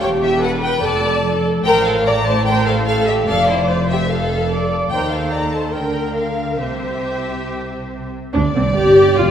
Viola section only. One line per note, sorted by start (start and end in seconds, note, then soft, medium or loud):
0.02 0.42 G4 medium
0.43 0.84 B4 medium
0.84 1.23 A4 medium
1.24 1.64 A4 medium
1.66 2.05 C5 medium
2.05 2.46 D5 medium
2.47 2.86 C5 medium
2.87 3.27 A4 medium
3.29 3.70 D5 medium
3.69 4.10 C5 medium
4.10 4.51 A4 medium
4.52 4.92 D5 medium
4.93 5.34 C5 medium
5.34 5.75 A4 medium
5.74 6.60 A#4 medium
6.61 8.10 C5 medium
8.34 8.42 D4 medium
8.56 8.64 C4 medium
8.76 9.17 G4 loud
9.18 9.31 F4 medium